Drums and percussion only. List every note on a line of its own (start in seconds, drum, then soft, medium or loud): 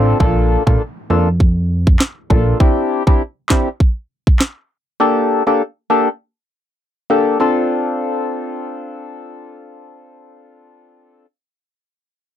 0.20 kick loud
0.67 kick loud
1.40 kick medium
1.87 kick medium
2.00 snare loud
2.00 clap medium
2.30 kick loud
2.60 kick loud
3.07 kick loud
3.50 kick medium
3.50 snare loud
3.50 clap medium
3.80 kick medium
4.27 kick medium
4.40 snare loud
4.40 clap medium